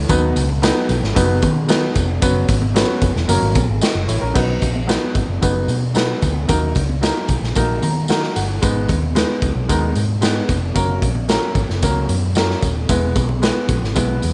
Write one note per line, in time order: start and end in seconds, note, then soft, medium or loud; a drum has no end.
0.09 0.32 D#2 loud
0.09 0.40 F#3 medium
0.09 0.40 B3 medium
0.09 0.40 D#4 medium
0.09 0.40 B4 loud
0.09 kick loud
0.09 closed hi-hat medium
0.09 tambourine loud
0.09 muted conga soft
0.09 low conga medium
0.36 0.70 C#2 loud
0.36 closed hi-hat medium
0.36 tambourine medium
0.49 high conga medium
0.62 0.93 F#3 medium
0.62 0.93 B3 medium
0.62 0.93 D#4 medium
0.62 0.93 B4 loud
0.62 snare loud
0.62 closed hi-hat medium
0.62 tambourine loud
0.62 muted conga soft
0.77 high conga medium
0.89 1.00 B1 medium
0.89 closed hi-hat medium
0.89 tambourine medium
0.89 low conga medium
1.02 1.13 G#1 medium
1.02 snare soft
1.15 1.39 F#1 loud
1.15 1.46 F#3 medium
1.15 1.46 B3 medium
1.15 1.47 D#4 medium
1.15 1.47 B4 medium
1.15 kick medium
1.15 closed hi-hat medium
1.15 tambourine medium
1.15 high conga medium
1.15 low conga medium
1.42 1.87 D#3 loud
1.42 kick medium
1.42 closed hi-hat medium
1.42 tambourine medium
1.42 high conga medium
1.68 1.99 F#3 medium
1.68 1.99 B3 medium
1.68 2.00 D#4 medium
1.68 2.00 B4 medium
1.68 snare loud
1.68 closed hi-hat medium
1.68 tambourine loud
1.68 muted conga soft
1.68 high conga medium
1.94 2.18 F1 medium
1.94 kick loud
1.94 closed hi-hat medium
1.94 tambourine medium
1.94 muted conga soft
2.21 2.45 F#1 loud
2.21 2.52 F#3 medium
2.21 2.53 B3 medium
2.21 2.53 C#4 medium
2.21 2.53 B4 loud
2.21 kick loud
2.21 closed hi-hat loud
2.21 tambourine loud
2.21 muted conga soft
2.21 low conga medium
2.36 high conga soft
2.48 2.82 G#1 medium
2.48 kick medium
2.48 closed hi-hat medium
2.48 tambourine medium
2.62 high conga medium
2.74 3.05 F#3 medium
2.74 3.06 B3 medium
2.74 3.06 C#4 medium
2.74 3.06 B4 loud
2.74 snare loud
2.74 closed hi-hat medium
2.74 tambourine medium
2.90 high conga medium
3.01 3.13 F#1 medium
3.01 kick loud
3.01 closed hi-hat medium
3.01 tambourine medium
3.01 muted conga soft
3.01 low conga medium
3.16 3.27 E1 medium
3.16 snare soft
3.28 3.40 F#1 loud
3.28 3.59 F#3 medium
3.28 3.59 A#3 medium
3.28 3.60 C#4 medium
3.28 3.60 A#4 medium
3.28 closed hi-hat medium
3.28 tambourine loud
3.28 high conga medium
3.28 low conga medium
3.42 3.53 G#1 medium
3.55 3.67 A#1 medium
3.55 kick medium
3.55 closed hi-hat medium
3.55 tambourine medium
3.55 high conga medium
3.68 3.80 G#1 medium
3.81 4.08 F#4 medium
3.81 4.07 D#5 medium
3.81 snare medium
3.81 closed hi-hat medium
3.81 tambourine medium
3.81 high conga medium
3.95 4.06 F#1 medium
4.08 4.20 A1 medium
4.08 4.21 E4 medium
4.08 4.21 C#5 medium
4.08 closed hi-hat medium
4.08 tambourine medium
4.08 muted conga soft
4.21 4.33 A#1 medium
4.21 4.47 C#4 medium
4.21 4.47 A#4 medium
4.34 4.58 B1 loud
4.34 4.65 F#3 medium
4.34 4.65 B3 medium
4.34 4.66 D#4 medium
4.34 4.66 B4 medium
4.34 kick loud
4.34 crash medium
4.34 tambourine medium
4.34 low conga medium
4.50 high conga soft
4.62 4.96 A#1 medium
4.62 kick medium
4.62 closed hi-hat medium
4.62 tambourine medium
4.62 muted conga soft
4.76 high conga medium
4.87 5.19 F#3 medium
4.87 5.19 B3 medium
4.87 5.19 D#4 medium
4.87 5.19 B4 medium
4.87 snare loud
4.87 closed hi-hat medium
4.87 tambourine loud
4.87 muted conga soft
5.04 high conga medium
5.15 5.27 G#1 medium
5.15 kick loud
5.15 closed hi-hat medium
5.15 tambourine soft
5.15 muted conga soft
5.15 low conga medium
5.28 5.39 F#1 medium
5.41 5.65 F#1 medium
5.41 5.72 F#3 medium
5.41 5.73 B3 medium
5.41 5.73 D#4 medium
5.41 5.73 B4 medium
5.41 kick medium
5.41 closed hi-hat medium
5.41 tambourine medium
5.41 high conga medium
5.41 low conga medium
5.68 6.13 B2 medium
5.68 closed hi-hat medium
5.68 tambourine medium
5.68 muted conga soft
5.68 high conga medium
5.94 6.25 F#3 medium
5.94 6.26 B3 medium
5.94 6.26 D#4 medium
5.94 6.26 B4 medium
5.94 snare medium
5.94 closed hi-hat medium
5.94 tambourine medium
5.94 muted conga soft
5.94 high conga medium
6.22 6.45 D2 medium
6.22 kick medium
6.22 closed hi-hat medium
6.22 tambourine medium
6.22 muted conga soft
6.48 6.71 D#2 medium
6.48 6.79 F#3 medium
6.48 6.79 A#3 medium
6.48 6.80 D#4 medium
6.48 6.80 A#4 medium
6.48 kick loud
6.48 closed hi-hat medium
6.48 tambourine medium
6.48 muted conga soft
6.48 low conga medium
6.63 high conga soft
6.75 7.09 C#2 medium
6.75 kick medium
6.75 closed hi-hat medium
6.75 tambourine medium
6.75 muted conga soft
6.89 high conga medium
7.01 7.32 F#3 medium
7.01 7.33 A#3 medium
7.01 7.33 D#4 medium
7.01 7.33 A#4 medium
7.01 snare loud
7.01 closed hi-hat medium
7.01 tambourine medium
7.17 high conga medium
7.28 7.40 B1 medium
7.28 kick medium
7.28 closed hi-hat medium
7.28 tambourine soft
7.28 muted conga soft
7.28 low conga medium
7.42 7.53 A#1 medium
7.42 snare soft
7.55 7.78 A#1 medium
7.55 7.86 F#3 medium
7.55 7.86 A#3 medium
7.55 7.87 D#4 medium
7.55 7.87 A#4 medium
7.55 kick medium
7.55 closed hi-hat medium
7.55 tambourine medium
7.55 high conga medium
7.55 low conga medium
7.82 8.27 D#3 medium
7.82 8.07 A#5 medium
7.82 closed hi-hat medium
7.82 tambourine medium
7.82 muted conga soft
7.82 high conga medium
8.08 8.40 F#3 medium
8.08 8.40 A#3 medium
8.08 8.40 D#4 medium
8.08 8.40 A#4 medium
8.08 8.34 F#5 medium
8.08 snare medium
8.08 closed hi-hat medium
8.08 tambourine medium
8.08 muted conga soft
8.08 high conga medium
8.23 snare soft
8.36 8.58 G1 medium
8.36 8.61 F#5 medium
8.36 closed hi-hat medium
8.36 tambourine medium
8.62 8.85 G#1 medium
8.62 8.93 G#3 medium
8.62 8.93 B3 medium
8.62 8.93 D#4 medium
8.62 8.93 B4 medium
8.62 kick loud
8.62 closed hi-hat medium
8.62 tambourine medium
8.62 muted conga soft
8.62 low conga medium
8.76 high conga soft
8.88 9.23 D#2 medium
8.88 kick medium
8.88 closed hi-hat medium
8.88 tambourine medium
8.88 muted conga soft
9.02 high conga medium
9.15 9.46 G#3 medium
9.15 9.46 B3 medium
9.15 9.46 D#4 medium
9.15 9.47 B4 medium
9.15 snare loud
9.15 closed hi-hat medium
9.15 tambourine loud
9.15 muted conga soft
9.30 high conga medium
9.42 9.54 C#2 medium
9.42 kick loud
9.42 closed hi-hat medium
9.42 tambourine soft
9.42 muted conga soft
9.42 low conga medium
9.55 9.67 B1 medium
9.69 9.92 D#2 medium
9.69 9.99 G#3 medium
9.69 10.00 B3 medium
9.69 10.00 D#4 medium
9.69 10.00 A#4 medium
9.69 kick medium
9.69 closed hi-hat medium
9.69 tambourine medium
9.69 muted conga soft
9.69 high conga medium
9.69 low conga medium
9.95 10.40 G#2 medium
9.95 closed hi-hat medium
9.95 tambourine medium
9.95 muted conga soft
9.95 high conga medium
10.21 10.52 G#3 medium
10.21 10.53 B3 medium
10.21 10.53 D#4 medium
10.21 10.53 B4 medium
10.21 snare medium
10.21 closed hi-hat medium
10.21 tambourine medium
10.21 muted conga soft
10.21 high conga medium
10.49 10.71 F1 medium
10.49 kick medium
10.49 closed hi-hat medium
10.49 tambourine medium
10.74 10.98 F#1 loud
10.74 11.06 F#3 medium
10.74 11.06 A#3 medium
10.74 11.06 C#4 medium
10.74 11.07 A#4 loud
10.74 kick loud
10.74 closed hi-hat medium
10.74 tambourine medium
10.90 high conga soft
11.02 11.36 A#1 medium
11.02 kick medium
11.02 closed hi-hat medium
11.02 tambourine medium
11.15 high conga medium
11.28 11.59 F#3 medium
11.28 11.59 A#3 medium
11.28 11.60 C#4 medium
11.28 11.60 A#4 medium
11.28 snare loud
11.28 closed hi-hat medium
11.28 tambourine medium
11.28 muted conga soft
11.43 high conga medium
11.55 11.67 G#1 medium
11.55 kick loud
11.55 closed hi-hat medium
11.55 tambourine soft
11.55 muted conga soft
11.55 low conga medium
11.69 11.80 F#1 medium
11.69 snare soft
11.83 12.05 C#2 medium
11.83 12.13 F#3 medium
11.83 12.13 A#3 medium
11.83 12.13 C#4 medium
11.83 12.14 A#4 medium
11.83 kick medium
11.83 closed hi-hat medium
11.83 tambourine medium
11.83 muted conga soft
11.83 high conga medium
11.83 low conga medium
12.09 12.54 F#2 medium
12.09 closed hi-hat medium
12.09 tambourine soft
12.09 muted conga soft
12.09 high conga medium
12.35 12.66 F#3 medium
12.35 12.67 A#3 medium
12.35 12.67 C#4 medium
12.35 12.67 A#4 medium
12.35 snare medium
12.35 closed hi-hat medium
12.35 tambourine medium
12.35 high conga medium
12.50 snare soft
12.61 12.85 D#1 medium
12.61 kick loud
12.61 closed hi-hat medium
12.61 tambourine medium
12.61 muted conga soft
12.89 13.11 E1 loud
12.89 13.20 G#3 medium
12.89 13.20 B3 medium
12.89 13.20 E4 medium
12.89 13.20 B4 medium
12.89 kick loud
12.89 closed hi-hat medium
12.89 tambourine medium
12.89 muted conga soft
12.89 low conga medium
13.04 high conga soft
13.15 13.49 B1 medium
13.15 kick medium
13.15 closed hi-hat medium
13.15 tambourine medium
13.29 high conga medium
13.42 13.73 G#3 medium
13.42 13.73 B3 medium
13.42 13.73 E4 medium
13.42 13.73 B4 medium
13.42 snare loud
13.42 closed hi-hat medium
13.42 tambourine loud
13.42 muted conga soft
13.57 high conga medium
13.69 13.80 A#1 medium
13.69 kick loud
13.69 closed hi-hat medium
13.69 tambourine medium
13.69 low conga medium
13.82 13.94 G#1 medium
13.82 snare soft
13.95 14.18 B1 medium
13.95 14.26 G#3 medium
13.95 14.26 B3 medium
13.95 14.26 E4 medium
13.95 14.27 B4 medium
13.95 kick medium
13.95 closed hi-hat medium
13.95 tambourine medium
13.95 high conga medium
13.95 low conga medium
14.22 14.33 E2 medium
14.22 closed hi-hat medium
14.22 tambourine medium
14.22 muted conga soft
14.22 high conga medium